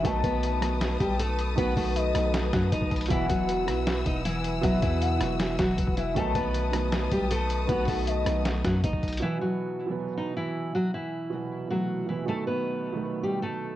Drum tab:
HH |x---x---x---x---x---x---x---x---|x---o---x---x---x---x---x---xxxx|x---x---x---x---x---x---x---x---|x---x---x---x---x---x---x---x---|
SD |------------r---o---------------|------------r---o---o-----------|------------r---o---------------|------------r---o---o-----------|
BD |o---o---------------o-----------|o---o---------------o---o-o-o---|o---o---------------o-----------|o---o---------------o---o-o-----|

HH |x---x---x---x---x---x---x---x---|x---o---x---x---x---x---x---xxxx|--------------------------------|--------------------------------|
SD |------------r---o---------------|------------r---o---o-----------|--------------------------------|--------------------------------|
BD |o---o---------------o-----------|o---o---------------o---o-o-o---|--------------------------------|--------------------------------|

HH |--------------------------------|
SD |--------------------------------|
BD |--------------------------------|